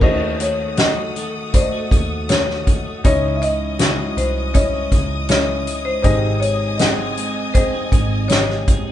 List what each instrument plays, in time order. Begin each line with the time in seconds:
0.00 fingered electric bass D#2, clean electric guitar D#3 A3 D#4 F#4, felt piano D#3 A3 F#4 D#5, string section A4 F#5 D#6, marimba C5, kick, crash
0.39 clean electric guitar D#3 A3 D#4 F#4, marimba C#5, closed hi-hat
0.77 clean electric guitar D#3 A3 D#4 F#4, felt piano A3 F#4 F#5, marimba D#5, snare, closed hi-hat
0.96 clean electric guitar A3 D#4 F#4
1.16 clean electric guitar D#3 A3 D#4 F#4, closed hi-hat
1.53 felt piano A3 F#4 D5, marimba C5, kick, closed hi-hat
1.61 felt piano D#5
1.72 clean electric guitar A3 D#4 F#4
1.91 fingered electric bass D#2, clean electric guitar D#3 A3 D#4 F#4, kick, closed hi-hat
2.29 clean electric guitar D#3 A3 D#4 F#4, felt piano A3 F#4 A4, marimba C#5, snare, closed hi-hat
2.50 snare
2.66 clean electric guitar D#3 A3 D#4 F#4, kick, closed hi-hat
2.85 clean electric guitar A3 D#4 F#4
3.04 fingered electric bass C#2, felt piano G#2 C#4 E4 D#5, clean electric guitar C#3 E3 G#3 D#4 E4, string section C#4 D#5 D#6, marimba C#5, kick, closed hi-hat
3.36 marimba E5
3.42 clean electric guitar E3 G#3 D#4 E4, marimba D#5, closed hi-hat
3.79 clean electric guitar C#3 E3 G#3 D#4 E4, felt piano C#4 E4 F#4, snare, closed hi-hat
3.98 clean electric guitar G#3 D#4 E4
4.17 fingered electric bass C2, clean electric guitar E3 G#3 D#4 E4, marimba C5, closed hi-hat
4.54 felt piano C#4 E4 D#5, marimba C#5, kick, closed hi-hat
4.74 clean electric guitar G#3 D#4 E4
4.91 fingered electric bass C#2, clean electric guitar E3 G#3 D#4 E4, kick, closed hi-hat
5.29 clean electric guitar C#3 E3 G#3 D#4 E4, felt piano C#4 E4 D#5, marimba C#5, snare, closed hi-hat
5.66 clean electric guitar E3 G#3 D#4 E4, closed hi-hat
5.85 clean electric guitar G#3 D#4 E4, marimba C5
6.02 fingered electric bass G#1, felt piano G#2 C3 D#3 G#4 D#5, clean electric guitar G#2 D#3 G#3 C4 D#4 G#4, marimba C5, string section D#5 G#5, kick, closed hi-hat
6.40 clean electric guitar G#3 D#4 G#4, marimba C#5, closed hi-hat
6.78 clean electric guitar G#2 D#3 G#3 C4 D#4 G#4, felt piano C4 G#4 F#5, marimba D#5, snare, closed hi-hat
6.98 clean electric guitar G#3 C4 D#4 G#4
7.16 clean electric guitar G#3 C4 D#4 G#4, closed hi-hat
7.54 felt piano C4 G#4 D#5, marimba C5, kick, closed hi-hat
7.73 clean electric guitar G#3 C4 D#4 G#4
7.92 fingered electric bass G#1, clean electric guitar G#3 C4 D#4 G#4, kick, closed hi-hat
8.28 clean electric guitar G#2 D#3 G#3 D#4 G#4, felt piano C3 G#4 D#5, marimba C#5, snare, closed hi-hat
8.50 snare
8.67 clean electric guitar G#3 C4 D#4 G#4, kick, closed hi-hat
8.86 clean electric guitar G#3 C4 D#4 G#4